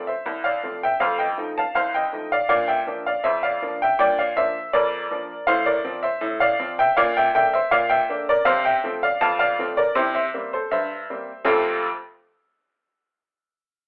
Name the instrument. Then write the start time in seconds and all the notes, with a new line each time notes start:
upright piano
Already playing: C4
0.07 C5 E5
0.26 C2
0.44 D5 F5
0.63 F3 A3 C4
0.83 E5 G5
1.00 F2 A3 C5 F5
1.19 D#5 G5
1.38 F3 A3 D#4
1.58 F5 A5
1.75 C2 C5 F5
1.94 D#5 G5
2.13 F3 A3 D#4
2.32 D5 F5
2.49 A#2 D4 D5 F5
2.68 E5 G5
2.87 F3 A#3 D4
3.06 D5 F5
3.24 F2 C5 E5
3.43 D5 F5
3.62 F3 A#3 D4
3.82 E5 G5
3.99 A#2 D4 D5 G5
4.19 D5 F5
4.36 F3 A#3 D4 C5 E5
4.73 F2 A#4 D5
5.11 F3 A#3 D4
5.47 A2 C5 F5
5.66 A#4 D5
5.84 F3 C4
6.03 C5 E5
6.21 A2
6.40 D5 F5
6.59 F3 C4
6.79 E5 G5
6.97 A#2 D5 F5
7.17 E5 G5
7.35 D3 A#3 D4 E5 G5
7.54 C5 E5
7.71 A#2 D5 F5
7.89 E5 G5
8.09 D3 A#3 D4
8.29 A#4 D5
8.45 C3 C5 F5
8.65 E5 G5
8.84 F3 A3 C4
9.03 D5 F5
9.21 F2 F5 A5
9.39 D5 F5
9.59 F3 A3 C4
9.77 A#4 D5
9.95 C3 E4 G4 C5
10.15 C5 E5
10.34 G3 A#3 C4
10.53 A4 C5
10.71 G2 C5 E5
11.10 G3 A#3 C4
11.45 F2 C3 A3 C4 F4 A4 F5